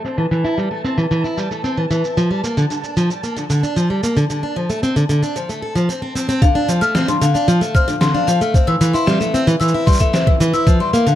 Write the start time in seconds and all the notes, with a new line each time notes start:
Already playing: A5
0.05 C4, shaker
0.18 E3
0.31 E3, shaker
0.44 E4, shaker
0.58 G3, shaker
0.71 A3
0.85 C4, shaker
0.98 E3, shaker
1.11 E3, shaker
1.24 E4, shaker
1.37 G3, shaker
1.51 A3, shaker
1.64 C4, shaker
1.77 E3
1.91 E3, shaker
2.04 E4, shaker
2.17 F3, shaker
2.31 G3
2.44 A#3, shaker
2.57 D3, shaker
2.70 D3, shaker
2.84 D4, shaker
2.97 F3, shaker
3.10 G3, shaker
3.23 A#3, shaker
3.37 D3, shaker
3.50 D3, shaker
3.63 D4, shaker
3.76 F3, shaker
3.90 G3
4.03 A#3, shaker
4.17 D3, shaker
4.30 D3, shaker
4.43 D4
4.56 F3
4.70 A3, shaker
4.83 C4, shaker
4.96 D3, shaker
5.09 D3, shaker
5.23 D4, shaker
5.36 F3, shaker
5.49 A3, shaker
5.62 A4
5.75 F3, shaker
5.89 C4, shaker
6.02 C4
6.15 C4, shaker
6.29 C4, shaker
6.42 D3 F5, kick, shaker
6.55 D4
6.69 F3, shaker
6.81 A3 F6, shaker
6.95 C4, snare, shaker
7.08 D3 C6, shaker
7.21 D3 F5, shaker
7.34 D4 F5, shaker
7.48 F3, shaker
7.61 A3, shaker
7.74 C4 F6, kick, shaker
7.88 D3, shaker
8.01 D3 C6, snare, shaker
8.14 D4 F5
8.27 F3 F5, shaker
8.41 A3, shaker
8.54 C4, kick, shaker
8.67 E3 E6
8.81 E3, shaker
8.94 E4 C6, shaker
9.06 G3 E5, snare, shaker
9.20 A3 E5, shaker
9.34 C4, shaker
9.47 E3, shaker
9.60 E3 E6, shaker
9.68 shaker
9.74 E4
9.86 G3 C6, kick, shaker
9.90 shaker
9.92 shaker
9.94 shaker
9.97 shaker
9.99 A3 E5, kick, shaker
10.01 shaker
10.13 C4 E5, snare, shaker
10.27 E3, kick
10.40 E3, shaker
10.54 E4 E6, shaker
10.67 F3, kick, shaker
10.80 G3 C6
10.93 A#3 F5, shaker
11.06 D3 F5, shaker